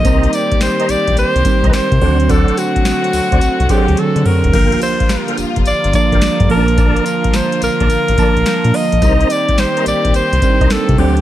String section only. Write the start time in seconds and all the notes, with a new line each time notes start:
Already playing: A#3
0.05 D#3 G3 C4 G4
2.01 D3 F#3 A3 F#4
4.53 F3 G3 A#3 F4
6.50 D3 F4
9.02 D#3 G3 A#3 C4 G4
10.98 D3 F#3 A3 F#4